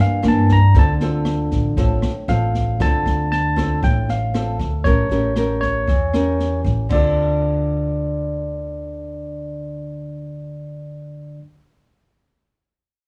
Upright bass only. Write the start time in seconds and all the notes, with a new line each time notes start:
0.24 G2
0.74 D2
1.51 A1
1.77 A1
2.28 A1
2.80 D2
3.06 D2
3.83 A1
4.59 D2
4.85 A1
5.09 A1
5.87 E2
6.64 A1
6.90 D2